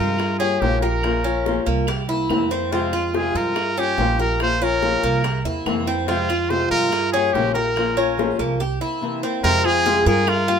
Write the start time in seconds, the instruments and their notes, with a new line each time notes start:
Already playing: upright bass G2, nylon-string guitar C3 F3 G#3 C4 F4, cuban tres F4, trumpet A#4
0.19 muted nylon-string guitar stroke, high bongo, claves
0.39 nylon-string guitar A#3 F4 G4, cuban tres C#4, trumpet G#4, high bongo
0.61 upright bass A#1, nylon-string guitar C#3 F3 A#3 F4 G4, trumpet G4, high bongo, low bongo
0.81 nylon-string guitar A#3 F4 G4, trumpet A#4, cuban tres A#4, high bongo
1.03 nylon-string guitar F3 A#3 C#4 F4, high bongo, claves
1.24 nylon-string guitar A#3 C#4 F4, cuban tres C#4
1.46 nylon-string guitar F3 A#3 C#4 F4, high bongo
1.66 upright bass C2, cuban tres A#3, high bongo
1.87 cuban tres G4, muted nylon-string guitar stroke, high bongo, claves
2.09 nylon-string guitar A#3 C4 E4, cuban tres E4, high bongo
2.29 upright bass F2, nylon-string guitar C3 E3 A#3 C4 E4, high bongo, low bongo, claves
2.50 nylon-string guitar A#3 C4 E4, cuban tres C4, high bongo
2.72 nylon-string guitar C3 F3 G#3 C4 F4, cuban tres C4, trumpet F4, high bongo
2.93 nylon-string guitar G#3 C4 F4, cuban tres F4, claves
3.13 nylon-string guitar C3 F3 G#3 C4 F4, trumpet G#4, high bongo
3.35 upright bass G2, cuban tres F4, trumpet A#4, high bongo
3.56 muted nylon-string guitar stroke, high bongo, claves
3.77 nylon-string guitar A#3 F4 G4, cuban tres C#4, trumpet G4, high bongo
3.98 upright bass A#1, nylon-string guitar C#3 F3 A#3 F4 G4, high bongo, low bongo
4.19 nylon-string guitar A#3 F4 G4, cuban tres A#4, trumpet A#4, high bongo
4.40 nylon-string guitar F3 A#3 C#4 F4, trumpet C5, high bongo, claves
4.61 nylon-string guitar A#3 C#4 F4, cuban tres C#4, trumpet A#4
4.82 nylon-string guitar F3 A#3 C#4 F4, high bongo
5.03 upright bass C2, cuban tres A#3, high bongo
5.24 cuban tres G4, muted nylon-string guitar stroke, high bongo, claves
5.45 upright bass E2, nylon-string guitar A#3 C4 E4, cuban tres E4, high bongo
5.66 upright bass F2, nylon-string guitar C3 E3 A#3 C4 E4, high bongo, low bongo, claves
5.87 nylon-string guitar A#3 C4 E4, cuban tres C4, high bongo
6.08 nylon-string guitar C3 F3 G#3 C4 F4, cuban tres C4, trumpet F4, high bongo
6.29 nylon-string guitar G#3 C4 F4, cuban tres F4, claves
6.50 nylon-string guitar C3 F3 G#3 C4 F4, trumpet C5, high bongo
6.71 upright bass G2, cuban tres F4, trumpet A#4, high bongo
6.92 muted nylon-string guitar stroke, high bongo, claves
7.12 nylon-string guitar A#3 F4 G4, cuban tres C#4, trumpet G#4, high bongo
7.33 upright bass A#1, nylon-string guitar C#3 F3 A#3 F4 G4, trumpet G4, high bongo, low bongo
7.54 nylon-string guitar A#3 F4 G4, trumpet A#4, cuban tres A#4, high bongo
7.76 nylon-string guitar F3 A#3 C#4 F4, high bongo, claves
7.97 nylon-string guitar A#3 C#4 F4, cuban tres C#4
8.18 nylon-string guitar F3 A#3 C#4 F4, high bongo
8.39 upright bass C2, cuban tres A#3, high bongo
8.60 cuban tres G4, muted nylon-string guitar stroke
8.81 nylon-string guitar A#3 C4 E4, cuban tres E4
9.01 nylon-string guitar C3 E3 A#3 C4 E4
9.23 nylon-string guitar A#3 C4 E4, cuban tres C4
9.44 upright bass F2, nylon-string guitar C3 F3 G#3 C4 F4, cuban tres C4, trumpet A#4, high bongo
9.64 nylon-string guitar G#3 C4 F4, trumpet G#4, high bongo, claves
9.85 nylon-string guitar C3 F3 G#3 C4 F4, cuban tres G#4, high bongo
10.06 upright bass G2, nylon-string guitar G#3 C4 F4, trumpet G#4, cuban tres A#4
10.27 trumpet F4, muted nylon-string guitar stroke, high bongo, claves
10.48 nylon-string guitar A#3 F4 G4, cuban tres F4, high bongo